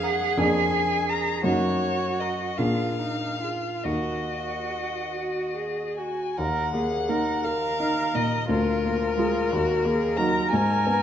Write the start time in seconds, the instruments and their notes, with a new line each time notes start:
Already playing: grand piano F2 A#3 D4 G#4, cello G#4
0.03 viola A#4, violin F#5
0.37 grand piano F2 A#3 D4 G#4, violin G#5
1.10 viola A#4, violin A#5
1.44 grand piano F#2 A#3 D#4 F#4, cello F#4, violin C#5
2.20 viola A#4, violin D#5
2.58 grand piano A#2 A#3 D4 G#4, cello F4, violin F5
2.99 cello D#4
3.41 cello F4, viola G#4
3.84 grand piano D#2 A#3 D#4 F#4, cello F#4, violin D#5
4.70 viola F#4
5.12 viola F#4
5.55 viola G#4
5.97 viola F#4, violin G#5
6.37 grand piano D#2, viola A#4, violin F#5
6.74 grand piano A#3, viola G#4
7.09 cello A#3, grand piano D#4, viola A#4
7.44 viola A#4, grand piano A#4, violin F5
7.80 grand piano D#4
8.15 grand piano A#2, cello A#3, violin D#5
8.49 grand piano D2, viola F4, violin A#4
8.85 grand piano A#3
9.17 cello G#3, grand piano F4 G#4
9.52 grand piano D#2, viola F#4
9.85 grand piano A#3, viola G#4
10.17 cello F#3, grand piano D#4 F#4, viola A#4, violin A#5
10.51 grand piano G#2, violin G#5
10.86 grand piano B3